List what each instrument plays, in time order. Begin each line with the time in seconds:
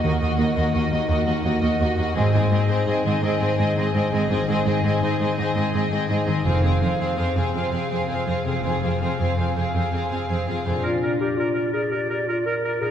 Already playing: harp A#3 D#4 F#4 A#4
0.03 cello section D#2, double bass section D#2, harp D#3, viola section A#3, violin section F#4 D#5
0.20 cello section D#2, viola section A#3, violin section F#4 D#5, harp A#4
0.38 cello section D#2, viola section A#3, harp D#4, violin section F#4 D#5
0.55 cello section D#2, viola section A#3, violin section F#4 D#5, harp A#4
0.72 cello section D#2, viola section A#3, harp F#4, violin section F#4 D#5
0.91 cello section D#2, harp A#3, viola section A#3, violin section F#4 D#5
1.08 cello section D#2, viola section A#3, harp D#4, violin section F#4 D#5
1.26 cello section D#2, viola section A#3, violin section F#4 D#5, harp A#4
1.43 cello section D#2, viola section A#3, harp D#4, violin section F#4 D#5
1.61 cello section D#2, viola section A#3, violin section F#4 D#5, harp A#4
1.79 cello section D#2, viola section A#3, harp F#4, violin section F#4 D#5
1.97 cello section D#2, harp A#3, viola section A#3, violin section F#4 D#5
2.15 double bass section G#1, harp G#2, cello section G#2, viola section C4, violin section G#4 D#5
2.33 cello section G#2, viola section C4, harp G#4, violin section G#4 D#5
2.50 cello section G#2, harp C4, viola section C4, violin section G#4 D#5
2.68 cello section G#2, viola section C4, harp G#4, violin section G#4 D#5
2.86 cello section G#2, viola section C4, harp D#4, violin section G#4 D#5
3.04 cello section G#2, harp D#3, viola section C4, violin section G#4 D#5
3.22 cello section G#2, harp C4, viola section C4, violin section G#4 D#5
3.40 cello section G#2, viola section C4, violin section G#4 D#5, harp G#4
3.58 cello section G#2, viola section C4, harp C4, violin section G#4 D#5
3.76 cello section G#2, viola section C4, harp G#4, violin section G#4 D#5
3.94 cello section G#2, viola section C4, harp D#4, violin section G#4 D#5
4.12 cello section G#2, harp D#3, viola section C4, violin section G#4 D#5
4.30 double bass section G#1, harp G#2, cello section G#2, viola section C4, violin section G#4 D#5
4.48 cello section G#2, viola section C4, violin section G#4 D#5, harp G#4
4.66 cello section G#2, harp C4, viola section C4, violin section G#4 D#5
4.84 cello section G#2, viola section C4, harp G#4, violin section G#4 D#5
5.02 cello section G#2, viola section C4, harp D#4, violin section G#4 D#5
5.20 cello section G#2, harp D#3, viola section C4, violin section G#4 D#5
5.38 cello section G#2, harp C4, viola section C4, violin section G#4 D#5
5.55 cello section G#2, viola section C4, harp G#4, violin section G#4 D#5
5.74 cello section G#2, harp C4, viola section C4, violin section G#4 D#5
5.91 cello section G#2, viola section C4, violin section G#4 D#5, harp G#4
6.09 cello section G#2, viola section C4, harp D#4, violin section G#4 D#5
6.27 cello section G#2, harp D#3, viola section C4, violin section G#4 D#5
6.44 double bass section F1, harp F2, cello section F2, viola section C4, violin section G#4 F5
6.63 cello section F2, viola section C4, violin section G#4 F5, harp G#4
6.82 cello section F2, harp C4, viola section C4, violin section G#4 F5
7.00 cello section F2, viola section C4, violin section G#4 F5, harp G#4
7.17 cello section F2, viola section C4, harp F4, violin section G#4 F5
7.36 cello section F2, harp C3, viola section C4, violin section G#4 F5
7.54 cello section F2, harp C4, viola section C4, violin section G#4 F5
7.72 cello section F2, viola section C4, harp G#4, violin section G#4 F5
7.90 cello section F2, harp C4, viola section C4, violin section G#4 F5
8.07 cello section F2, viola section C4, harp G#4, violin section G#4 F5
8.26 cello section F2, viola section C4, harp F4, violin section G#4 F5
8.44 cello section F2, harp C3, viola section C4, violin section G#4 F5
8.63 double bass section F1, harp F2, cello section F2, viola section C4, violin section G#4 F5
8.82 cello section F2, viola section C4, harp G#4, violin section G#4 F5
9.01 cello section F2, harp C4, viola section C4, violin section G#4 F5
9.18 cello section F2, viola section C4, harp G#4, violin section G#4 F5
9.38 cello section F2, viola section C4, harp F4, violin section G#4 F5
9.56 cello section F2, harp C3, viola section C4, violin section G#4 F5
9.74 cello section F2, harp C4, viola section C4, violin section G#4 F5
9.92 cello section F2, viola section C4, harp G#4, violin section G#4 F5
10.11 cello section F2, harp C4, viola section C4, violin section G#4 F5
10.29 cello section F2, viola section C4, harp G#4, violin section G#4 F5
10.47 cello section F2, viola section C4, harp F4, violin section G#4 F5
10.65 cello section F2, harp A#2 C3, viola section C4, violin section G#4 F5
10.70 harp D4
10.74 harp F4
10.79 harp A#4
10.84 clarinet F4, oboe A#4, flute D5
11.03 oboe A#4, flute D5
11.20 clarinet G4, oboe A#4, flute D5
11.38 clarinet F4, oboe A#4, flute D5
11.54 oboe A#4, flute D5
11.73 clarinet G#4, oboe A#4, flute D5
11.91 clarinet G4, oboe A#4, flute D5
12.10 oboe A#4, flute D5
12.27 clarinet F4, oboe A#4, flute D5
12.46 clarinet A#4, oboe A#4, flute D5
12.65 oboe A#4, flute D5
12.81 harp A#2, clarinet G#4, oboe A#4, flute D5
12.86 harp D#4